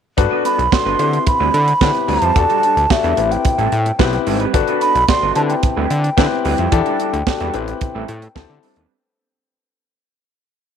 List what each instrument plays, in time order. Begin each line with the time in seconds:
0.17 analog synth bass G1, grand piano D4 F#4 A4 B4, muted clean electric guitar stroke, kick, closed hi-hat
0.31 clean electric guitar B3 D4 F#4 B4
0.44 clean electric guitar B3 D4 F#4 B4, ocarina B5, closed hi-hat
0.58 analog synth bass B1, muted clean electric guitar stroke, closed hi-hat
0.72 grand piano D4 F#4 A4 B4, ocarina C6, muted clean electric guitar stroke, kick, snare
0.86 analog synth bass G1, clean electric guitar B3 D4 F#4 B4
0.99 analog synth bass D3, grand piano C4 E4 G4 B4, muted clean electric guitar stroke, closed hi-hat
1.13 muted clean electric guitar stroke, closed hi-hat
1.27 ocarina B5, muted clean electric guitar stroke, kick, closed hi-hat
1.40 analog synth bass D2, clean electric guitar G3 C4 E4 B4
1.54 analog synth bass D3, muted clean electric guitar stroke, closed hi-hat
1.67 muted clean electric guitar stroke, closed hi-hat
1.81 analog synth bass D3, grand piano C4 E4 G4 B4, muted clean electric guitar stroke, kick, snare
1.95 muted clean electric guitar stroke, closed hi-hat
2.08 analog synth bass D2, clean electric guitar G3 C4 E4 B4, ocarina A5, open hi-hat
2.22 analog synth bass F2, clean electric guitar G3 C4 E4 C5, closed hi-hat
2.35 analog synth bass E2, grand piano D4 F#4 G4 A4, muted clean electric guitar stroke, kick, closed hi-hat
2.49 clean electric guitar G3 D4 F#4 A4, closed hi-hat
2.63 clean electric guitar G3 D4 F#4 A4, closed hi-hat
2.76 analog synth bass D2, muted clean electric guitar stroke, closed hi-hat
2.90 grand piano D4 F#4 G4 A4, ocarina E5, muted clean electric guitar stroke, kick, snare
3.04 analog synth bass E2, clean electric guitar G3 D4 F#4 A4, closed hi-hat
3.17 analog synth bass A1, grand piano C4 E4 G4 B4, muted clean electric guitar stroke, closed hi-hat
3.31 ocarina G5, muted clean electric guitar stroke, closed hi-hat
3.45 muted clean electric guitar stroke, kick, closed hi-hat
3.58 analog synth bass A1, clean electric guitar G3 C4 E4 A4, closed hi-hat
3.72 analog synth bass A2, muted clean electric guitar stroke, closed hi-hat
3.86 muted clean electric guitar stroke, closed hi-hat
3.99 analog synth bass B1, grand piano C4 E4 G4 B4, muted clean electric guitar stroke, kick, snare
4.13 muted clean electric guitar stroke, closed hi-hat
4.26 analog synth bass G#1, clean electric guitar G3 C4 E4 A4, open hi-hat
4.40 clean electric guitar G3 C4 E4 B4, closed hi-hat
4.53 analog synth bass G1, grand piano D4 F#4 A4 B4, muted clean electric guitar stroke, kick, closed hi-hat
4.67 clean electric guitar B3 D4 F#4 B4, closed hi-hat
4.81 clean electric guitar B3 D4 F#4 B4, ocarina B5, closed hi-hat
4.95 analog synth bass B1, muted clean electric guitar stroke, closed hi-hat
5.08 grand piano D4 F#4 A4 D5, ocarina C6, muted clean electric guitar stroke, kick, snare
5.22 analog synth bass G1, clean electric guitar B3 D4 F#4 B4
5.35 analog synth bass D3, grand piano C4 E4 G4 B4, ocarina A5, muted clean electric guitar stroke, closed hi-hat
5.49 ocarina G5, muted clean electric guitar stroke, closed hi-hat
5.63 muted clean electric guitar stroke, kick, closed hi-hat
5.76 analog synth bass D2, clean electric guitar G3 C4 E4 B4
5.90 analog synth bass D3, muted clean electric guitar stroke, closed hi-hat
6.04 muted clean electric guitar stroke, closed hi-hat
6.17 analog synth bass D3, grand piano C4 E4 G4 B4, muted clean electric guitar stroke, kick, snare
6.31 muted clean electric guitar stroke
6.45 analog synth bass D2, clean electric guitar G3 C4 E4 B4, open hi-hat
6.58 analog synth bass F2, clean electric guitar G3 C4 E4 C5, closed hi-hat
6.72 analog synth bass E2, grand piano D4 E4 G4 A4, muted clean electric guitar stroke, kick, closed hi-hat
6.86 clean electric guitar G3 D4 F#4 A4, closed hi-hat
7.00 clean electric guitar G3 D4 F#4 A4, closed hi-hat
7.13 analog synth bass D2, muted clean electric guitar stroke, closed hi-hat
7.26 grand piano D4 F#4 G4 A4, muted clean electric guitar stroke, kick, snare
7.40 analog synth bass E2, clean electric guitar G3 D4 F#4 A4, closed hi-hat
7.53 analog synth bass A1, grand piano C4 E4 G4 B4, muted clean electric guitar stroke, closed hi-hat
7.68 muted clean electric guitar stroke, closed hi-hat
7.81 muted clean electric guitar stroke, kick, closed hi-hat
7.95 analog synth bass A1, clean electric guitar G3 C4 E4 A4
8.08 analog synth bass A2, muted clean electric guitar stroke, closed hi-hat
8.22 muted clean electric guitar stroke, closed hi-hat
8.35 analog synth bass D2, grand piano C4 E4 G4 A4, muted clean electric guitar stroke, kick, snare
8.49 analog synth bass D3, muted clean electric guitar stroke
8.63 clean electric guitar G3 C4 D4 A4, open hi-hat
8.76 analog synth bass D#2, clean electric guitar G3 C4 D4 B4, closed hi-hat